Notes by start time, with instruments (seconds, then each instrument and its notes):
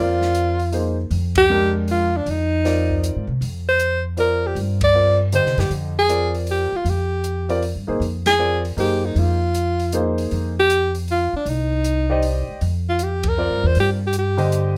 Already playing: upright bass F2, grand piano C4 F4 A#4 D5, alto saxophone F4
0.22 snare
0.34 closed hi-hat
0.59 open hi-hat
0.72 grand piano A#3 D#4 G#4 C5, open hi-hat
1.10 upright bass F2, open hi-hat
1.35 alto saxophone G4, kick, ride
1.50 grand piano G#3 D4 G4 A#4
1.88 alto saxophone F4, open hi-hat
2.17 alto saxophone D4
2.26 upright bass F2, alto saxophone D#4, open hi-hat
2.64 grand piano C4 F4 A#4 D5, snare, open hi-hat
2.90 kick
3.04 closed hi-hat
3.16 upright bass G#2
3.27 upright bass C3
3.41 upright bass F2, open hi-hat
3.68 alto saxophone C5
3.79 closed hi-hat
4.17 grand piano C4 F4 A#4 D5, alto saxophone A#4, open hi-hat
4.47 alto saxophone G4
4.55 upright bass G2, open hi-hat
4.81 alto saxophone D5, kick, ride
4.94 grand piano C4 F4 A#4 D5
5.32 grand piano D3 G4 C5 D#5, alto saxophone C5, closed hi-hat
5.45 upright bass C3, snare
5.57 upright bass F#2, alto saxophone G4, snare, open hi-hat
5.70 upright bass F2, open hi-hat
5.99 alto saxophone G#4
6.08 grand piano C4 F4 A#4 D5, closed hi-hat
6.34 open hi-hat
6.47 alto saxophone G4, open hi-hat
6.72 muted upright bass stroke
6.76 alto saxophone F4
6.85 upright bass F2, open hi-hat
6.89 alto saxophone G4
7.24 closed hi-hat
7.49 grand piano C4 F4 A#4 D5, open hi-hat
7.62 open hi-hat
7.76 upright bass G2
7.87 upright bass F#2, grand piano A#3 D#4 G#4 C5
8.00 upright bass F2, open hi-hat
8.26 alto saxophone G#4, snare, ride
8.38 grand piano C4 F4 A#4 D5
8.65 open hi-hat
8.77 upright bass F#2, grand piano A#3 D#4 G#4 C5, alto saxophone G4, open hi-hat
9.05 alto saxophone D#4
9.15 upright bass F2, alto saxophone F4, open hi-hat
9.54 closed hi-hat
9.79 open hi-hat
9.92 grand piano A#3 D#4 G#4 C5, closed hi-hat
10.18 open hi-hat
10.31 upright bass F2, open hi-hat
10.59 alto saxophone G4
10.70 closed hi-hat
10.95 open hi-hat
11.08 alto saxophone F4, open hi-hat
11.33 alto saxophone D4, muted upright bass stroke
11.46 upright bass C2, alto saxophone D#4, open hi-hat
11.84 closed hi-hat
12.10 grand piano G4 C5 D5 D#5
12.22 open hi-hat
12.48 muted upright bass stroke
12.61 upright bass F2, open hi-hat
12.89 alto saxophone F4
12.99 alto saxophone G4, closed hi-hat
13.23 kick, ride
13.28 alto saxophone A#4
13.38 grand piano C4 F4 A#4 D5
13.51 upright bass G2
13.63 upright bass E2, alto saxophone C5
13.75 upright bass G2, open hi-hat
13.80 alto saxophone G4
14.07 alto saxophone G4
14.13 closed hi-hat
14.18 alto saxophone G4
14.37 grand piano D3 G4 C5 D#5, open hi-hat
14.52 closed hi-hat